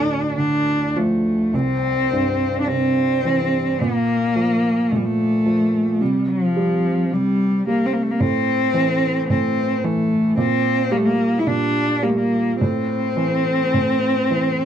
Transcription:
0.00 1.50 D2 soft
0.00 1.50 A2 soft
0.00 0.37 D4 medium
0.38 1.50 D3 soft
0.38 0.98 D4 medium
0.96 1.52 F3 soft
0.96 1.57 A3 medium
1.53 3.75 C2 soft
1.53 2.60 C4 medium
2.12 3.76 G2 soft
2.61 2.69 D4 soft
2.68 3.76 C3 soft
2.68 3.81 C4 medium
3.25 3.78 E3 soft
3.79 4.90 A#2 medium
3.79 4.92 A#3 medium
4.36 5.44 F3 soft
4.91 5.98 A#2 soft
4.91 4.98 A3 medium
4.97 5.06 G3 medium
5.05 6.03 A3 medium
5.46 5.99 F3 soft
6.01 7.10 C3 medium
6.01 6.31 G3 medium
6.30 7.15 F3 medium
6.57 7.66 G3 soft
7.11 8.17 C3 soft
7.11 7.67 G3 medium
7.67 8.19 G3 soft
7.67 7.87 A#3 medium
7.86 7.95 C4 medium
7.93 8.04 A#3 medium
8.02 8.12 A3 medium
8.11 8.22 A#3 medium
8.20 9.28 A2 medium
8.20 9.29 C4 medium
8.74 9.83 E3 soft
9.30 10.34 A2 soft
9.30 9.86 C4 medium
9.84 10.36 E3 soft
9.84 10.37 A3 medium
10.37 11.45 A#2 medium
10.37 10.93 C4 medium
10.91 12.01 G3 medium
10.91 10.98 A#3 medium
10.97 11.07 A3 medium
11.05 11.41 A#3 medium
11.39 11.48 E4 medium
11.47 12.56 A#2 soft
11.47 12.05 D4 medium
12.03 12.58 G3 soft
12.03 12.10 A#3 medium
12.08 12.18 A3 medium
12.17 12.60 A#3 medium
12.60 13.73 A2 medium
12.60 14.65 C4 medium
13.17 14.29 E3 soft
13.74 14.65 A2 soft
14.31 14.65 E3 soft

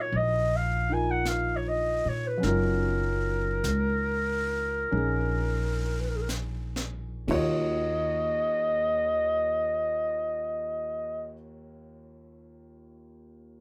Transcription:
0.00 2.36 F#3 soft
0.00 2.38 C#4 soft
0.00 0.88 D#4 soft
0.00 0.90 F4 soft
0.00 0.91 A#4 soft
0.00 0.18 C#5 medium
0.12 2.00 A#1 medium
0.12 brush sweep soft
0.16 0.58 D#5 medium
0.57 0.95 F5 medium
0.89 2.41 D#4 soft
0.89 2.42 F4 soft
0.89 2.43 A#4 soft
0.89 1.13 G#5 medium
1.11 1.30 F#5 medium
1.25 1.58 F5 medium
1.25 brush sweep soft
1.25 snare soft
1.25 hi-hat pedal soft
1.57 1.70 C#5 medium
1.69 2.11 D#5 medium
2.05 2.39 A#2 medium
2.05 2.29 C#5 medium
2.27 2.45 B4 medium
2.37 7.26 F#3 soft
2.37 4.90 C#4 soft
2.43 3.60 F#1 medium
2.43 4.91 D#4 soft
2.43 7.28 F4 soft
2.43 6.02 A#4 medium
2.43 brush sweep soft
2.43 snare soft
2.48 7.31 A#4 soft
3.64 4.87 C#2 medium
3.64 brush sweep soft
3.64 snare soft
3.64 hi-hat pedal medium
4.91 7.25 A#1 medium
4.91 7.28 C#4 soft
4.91 7.29 D#4 soft
4.91 7.29 G#4 soft
4.91 brush sweep soft
6.00 6.10 B4 medium
6.09 6.18 A#4 medium
6.17 6.23 G#4 soft
6.22 6.29 A#4 soft
6.29 snare soft
6.29 hi-hat pedal soft
6.76 snare soft
7.28 11.32 D#2 soft
7.28 11.29 D#2 medium
7.28 11.33 D#3 soft
7.28 11.33 F4 soft
7.28 11.34 F#4 soft
7.28 11.35 C#5 medium
7.28 kick soft
7.28 ride soft
7.32 11.32 D#5 medium

